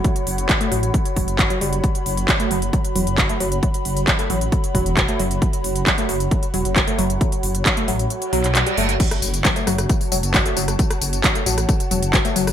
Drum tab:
CC |----------------|----------------|----------------|----------------|
HH |xxoxxxoxxxoxxxox|xxoxxxoxxxoxxxox|xxoxxxoxxxoxxxox|xxoxxxoxxxoxxxox|
TB |----------------|----------------|----------------|----------------|
CP |----x-------x---|----x-------x---|----x-------x---|----x-------x---|
SD |----------------|----------------|----------------|----------------|
BD |o---o---o-o-o---|o---o---o---o---|o---o---o-o-o---|o---o---o---o---|

CC |----------------|x---------------|----------------|
HH |xxoxxxoxxxoxxxox|xxoxxxoxxooxxxox|xxoxxxoxxxoxxxoo|
TB |----------------|xxxxxxxxxxxxxxxx|xxxxxxxxxxxxxxxx|
CP |----x------xx---|----x-------x---|----x-------x---|
SD |----------------|-r----rr-------r|-r-----r-------r|
BD |o---o-----------|o---o---o---o---|o---o---o---o---|